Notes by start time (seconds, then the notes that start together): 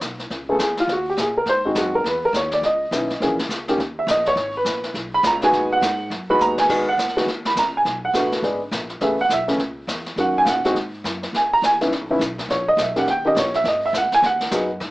0.01 B1, snare, hi-hat pedal
0.19 snare
0.30 C#2, brush sweep, snare
0.49 C#3 A3 B3 G#4 A4
0.59 E2 G#4, snare, hi-hat pedal
0.77 F4, snare
0.87 D#2, brush sweep, snare
0.92 F#4
1.10 G4
1.17 A#2 G#4, snare, hi-hat pedal
1.37 A#4
1.46 G#2 C5, brush sweep, snare
1.65 D#3 G#3 C4 D#4 F#4
1.75 F#2 F#4, snare, hi-hat pedal
1.95 A#4
2.04 E2 B4, brush sweep, snare
2.25 A#4
2.33 D#2 C#5, snare, hi-hat pedal
2.51 D5, snare
2.62 C#2 D#5, brush sweep, snare
2.91 B1 D#3 B3 C#4 E4, snare, hi-hat pedal
3.10 snare
3.20 A#1 E3 A#3 C#4 G#4, brush sweep, snare
3.39 snare
3.49 C#2, snare, hi-hat pedal
3.68 D#3 A#3 C#4 G4, snare
3.78 D#2, brush sweep, snare
3.99 E5
4.07 A#1 D#5, snare, hi-hat pedal
4.26 C#5, snare
4.36 G#1, brush sweep, snare
4.57 B4
4.65 A#1, snare, hi-hat pedal
4.84 snare
4.94 B1, brush sweep, snare
5.14 B5
5.23 C#2, snare, hi-hat pedal
5.27 A#5
5.42 D#3 G#3 B3 F#4 G#5, snare
5.52 D#2, brush sweep, snare
5.72 F#5
5.81 G#2, snare, hi-hat pedal
6.10 F#2, brush sweep, snare
6.30 D#3 G#3 B3 F#4 B5
6.39 D#2 A#5, hi-hat pedal
6.58 G#5, snare
6.69 G#2 D#3 G#3 B3 F#4, brush sweep, kick, snare, crash
6.89 F#5
6.98 E2, snare, hi-hat pedal
7.08 snare
7.16 D#3 G#3 B3 F#4, snare
7.26 D#2, brush sweep, snare
7.45 B5, snare
7.55 C#2 A#5, snare, hi-hat pedal
7.77 G#5
7.85 B1, brush sweep, snare
8.05 F#5
8.13 A1 D3 A3 B3 F#4, snare, hi-hat pedal
8.32 snare
8.42 G#1 D3 G#3 B3 D4, brush sweep, snare
8.71 A#1, snare, hi-hat pedal
8.90 snare
9.01 A1 C#3 A3 B3 G#4 E5, brush sweep, snare
9.21 F#5
9.29 B1 E5, snare, hi-hat pedal
9.48 C#3 A3 B3 C#4, snare
9.58 C#2, brush sweep, snare
9.87 E2, snare, hi-hat pedal
10.06 snare
10.16 F#2 D#3 A#3 C#4 F#4, brush sweep, snare
10.20 F#5
10.38 G#5
10.45 A#2 F5, snare, hi-hat pedal
10.49 F#5
10.65 D#3 G#3 C4 F#4, snare
10.75 G#2, brush sweep, snare
11.04 F#2, snare, hi-hat pedal
11.23 snare
11.33 E2 G#5, brush sweep, snare
11.53 A#5
11.62 D#2 G#5, snare, hi-hat pedal
11.81 D#3 B3 C#4 E4, snare
11.91 C#2, brush sweep, snare
12.01 B1
12.10 G#1 D#3 B3 C#4 E4
12.19 B1, snare, hi-hat pedal
12.38 kick, snare
12.49 A#1 C#5, brush sweep, snare
12.68 D#5
12.77 B1, snare, hi-hat pedal
12.82 E5
12.96 D#3 A#3 C#4 G4 F#5, snare
13.06 D#2, brush sweep, snare
13.10 G5
13.25 D#3 A#3 C#4 G4 D#5, kick
13.35 A#1 C#5, snare, hi-hat pedal
13.54 E5, snare
13.64 G#1, brush sweep, snare
13.68 D#5
13.86 E5
13.93 C#2, snare, hi-hat pedal
13.97 F#5
14.11 G#5, muted upright bass stroke, snare
14.22 D#2 F#5, brush sweep, snare
14.41 snare
14.51 F#2 F#3 B3 D#4 G#4, snare, hi-hat pedal
14.80 G#2, brush sweep, snare